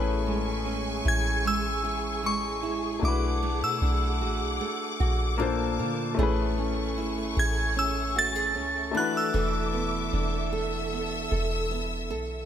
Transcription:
Already playing: A1 A2 A3 C#4 E4 G#4 B4 G#5 C#6
0.27 G#3
0.66 C#4
1.05 A1 E4 G#6
1.45 G#3 E6
1.85 E4
2.24 G#3 C#6
2.63 E4
3.00 B1 A3 D4 F#4 F#5 D6
3.04 E4 F#4 D6
3.08 B4
3.43 A3
3.62 B2 E6
3.82 B1 D4
4.21 A1 F#4
4.41 B1
4.61 A3
5.00 A#1 F#4
5.38 A#2 A#3 D4 F4 A4 A5
5.42 C5
5.79 D3 F4
6.15 A1 A3 C#4 C#6
6.19 A3 E4 G#4
6.23 B4
6.58 C#4
6.97 G#1 E4
7.37 A1 G#4 G#6
7.76 C#4 E6
8.16 F#4 A6
8.35 G#4
8.55 C#2 C#4
8.91 E3 A3 D4 A4 E5
8.95 E4 F#4 D6 F#6
9.00 B4
9.17 E6
9.34 E1 E3 A4
9.73 B3
10.13 E1 D4
10.52 A4 E6
10.92 B3
11.31 E1 A4
11.71 B3
12.10 B1 A4

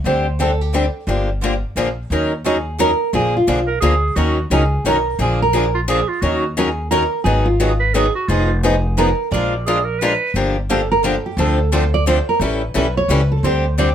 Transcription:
0.04 D2 D3 G3 C4 D4 G4 C5
0.40 D3 G3 C4 D4 G4 A4
0.61 G4
0.74 D3 G3 C4 D4 G4
1.07 G1 D3 F3 A#3 D4 G4
1.43 D3 F3 A#3 D4 G4
1.76 A#1 D3 F3 A#3 D4 G#4
2.10 D#2 D#3 F#3 C#4 D#4 A#4
2.46 D#3 F#3 C#4 D#4 G#4 A#4
2.79 D#3 F#3 C#4 D#4 A#4
3.13 A#1 D3 F3 A#3 D4 G#4
3.37 F4
3.47 B1 D3 F3 A#3 D4 G#4
3.67 A#4
3.81 D2 D3 F3 A#3 D4 G#4
4.16 D#2 D#3 F#3 C#4 D#4 F#4 A#4
4.50 C#2 D#3 F#3 C#4 D#4 G#4 A#4
4.84 B1 D#3 F#3 C#4 D#4 A#4
5.19 A#1 D3 F3 A#3 D4 G#4
5.42 A#4
5.53 D3 F3 A#3 D4 G#4
5.75 F4
5.88 D3 F3 A#3 D4 G#4
6.08 F4
6.22 D#2 D#3 F#3 C#4 D#4 F#4 A#4
6.57 D#3 F#3 C#4 D#4 G#4 A#4
6.91 D#3 F#3 C#4 D#4 A#4
7.24 G#1 D#3 F#3 B3 D#4 G#4
7.45 F4
7.60 D#3 F#3 B3 D#4 G#4
7.80 B4
7.94 D#3 F#3 B3 D#4 G#4
8.15 F#4
8.28 F1 F3 B3 D#4 F4 G#4
8.63 F3 B3 D#4 G#4
8.98 F3 B3 D#4 G#4 A#4
9.31 A#1 F3 G#3 D4 F4 A#4 D5
9.66 F3 G#3 D4 F4 G#4 A#4
9.85 A#4
9.99 F3 G#3 D4 F4 A#4 B4
10.34 G1 D3 F3 A#3 D4 G4
10.70 D3 F3 A#3 D4 G4 A4
10.92 A#4
11.04 D3 F3 A#3 D4 G4 A4
11.26 G4
11.37 D2 D3 F3 A3 C4 D4 F4 A4
11.72 D3 F3 A3 C4 D4 F4 A4 C5
11.94 D5
12.07 D3 F3 A3 C4 D4 F4 A4 C5
12.29 A#4
12.40 A1 E3 G3 C#4 E4 A4 B4
12.74 B1 E3 G3 C#4 E4 A4 B4
12.97 C#5
13.08 C#2 E3 G3 C#4 E4 A4 B4
13.32 A4
13.43 D2 D3 G3 C4 D4 G4 C5
13.78 D3 G3 C4 D4 G4 D5

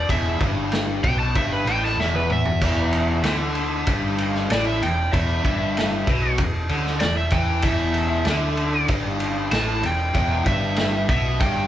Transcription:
0.09 E1 E2 E5, kick, ride
0.40 G1 G2, kick, ride
0.72 snare, ride
1.03 B1 B2 G5, kick, ride
1.19 A5
1.35 G1 G2 E5, kick, ride
1.52 B4
1.65 A1 A2 G5, ride
1.84 A5, snare
1.96 E1 E2 E5, snare
2.14 B4, high tom
2.30 E5, mid tom
2.45 floor tom
2.61 E1 E2, kick, ride, crash
2.92 ride
3.23 D2 D3, snare, ride
3.55 ride
3.87 G1 G2, kick, ride
4.18 ride
4.35 snare
4.50 A1 A2 D5, snare, ride
4.67 E5
4.81 E1 E2 G5, ride
5.13 E1 E2 E5, kick, ride
5.44 G1 G2, kick, ride
5.77 snare, ride
6.07 B1 B2, kick, ride
6.38 E1 E2, kick, ride
6.69 D2 D3, ride
6.86 snare
7.00 E1 E2 D5, snare, ride
7.17 E5
7.30 E2 E3 G5, kick, ride
7.62 E1 E2 E5, kick, ride
7.94 ride
8.25 D2 D3, snare, ride
8.57 ride
8.88 G1 G2, kick, ride
9.20 ride
9.51 A1 A2 A5, snare, ride
9.82 E1 E2, ride
9.86 G5
10.14 E1 E2, kick, ride
10.46 G1 G2 E5, kick, ride
10.76 snare, ride
11.09 B1 B2 E5, kick, ride
11.39 G1 G2 G5, kick, ride

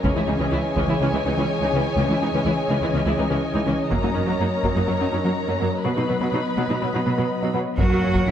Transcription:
0.04 C#2 C#3 E3 C#4 G#4 C#5 D#5 G#5, taiko
0.16 C#2 E3 E4
0.27 C#2 E3 C#4 D#4
0.40 C#2 C#3 E3 C#4
0.52 C#2 E3 E4
0.76 C#2 C#3 E3 C#4, taiko
0.88 C#2 E3 E4
1.01 C#2 C#3 E3 C#4
1.13 C#2 E3 G#3 E4
1.26 C#2 E3 C#4 D#4
1.38 C#2 C#3 E3 C#4
1.61 C#2 E3 D#4
1.73 C#2 C#3 E3 C#4
1.97 C#2 C#3 E3 C#4
2.09 C#2 E3 E4
2.21 C#2 E3 C#4 D#4
2.33 C#2 C#3 E3 C#4
2.46 C#2 E3 E4
2.69 C#2 C#3 E3 C#4
2.82 C#2 E3 E4
2.94 C#2 C#3 E3 C#4
3.06 C#2 E3 G#3 E4
3.18 C#2 E3 C#4 D#4
3.30 C#2 C#3 E3 C#4
3.55 C#2 E3 D#4
3.66 C#2 C#3 E3 C#4
3.89 F#2 F#3 A#3 A#4 C#5 A#5, taiko
4.03 F#2 F#3 A#3 D#4
4.14 F#2 F#3 C#4 D#4
4.27 F#2 F#3 A#3
4.40 F#2 F#3 A#3 D#4
4.63 F#2 F#3 A#3, taiko
4.76 F#2 F#3 A#3 D#4
4.88 F#2 F#3 A#3
4.99 F#2 F#3 C#4 D#4
5.12 F#2 F#3 C#4 D#4
5.25 F#2 F#3 A#3
5.47 F#2 F#3 A#3 C#4
5.60 F#2 F#3 A#3
5.84 B2 F#3 B3 B4 D#5 B5
5.96 B2 F#3 D#4
6.08 B2 F#3 B3 B4
6.21 B2 F#3 B3
6.33 B2 F#3 D#4
6.57 B2 F#3 B3
6.70 B2 F#3 D#4
6.82 B2 F#3 B3
6.94 B2 F#3 D#4 F#4
7.06 B2 F#3 B3 B4
7.18 B2 F#3 B3
7.43 B2 F#3 B3 D#4
7.54 B2 F#3 B3
7.77 F#2 F#3 A#3 F#4 A#4 C#5 F#5, taiko
7.89 F#2 F#4
8.02 F#2 A#3 C#4
8.14 F#2 F#3 A#4, taiko
8.26 F#2 E3 C#4 E4

